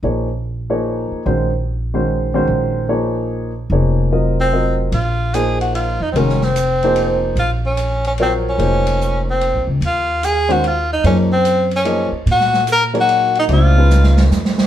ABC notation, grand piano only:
X:1
M:3/4
L:1/8
Q:"Swing" 1/4=147
K:Bbm
V:1 name="Grand piano"
[F,B,EAd] z2 [F,B,EAd]3 | [E,A,DGc] z2 [E,A,DGc]2 [E,A,DGc]- | [E,A,DGc]2 [F,B,EAd]3 z | [F,B,EAd]2 [G,CFBe]2 [G,CFBe]2 |
z2 [F,B,EAc]3 z | [E,A,DGB] z2 [F,B,EAc]3 | z4 [G,FBcd]2 | [F,B,EAc]4- [F,B,EAc] z |
z3 [E,A,DGc] z2 | [F,B,EAd] z3 [F,B,EAe] z | z3 [G,B,EAd]3 | [=A,=D=EGc] [_A,_D_EF_c]4 z |]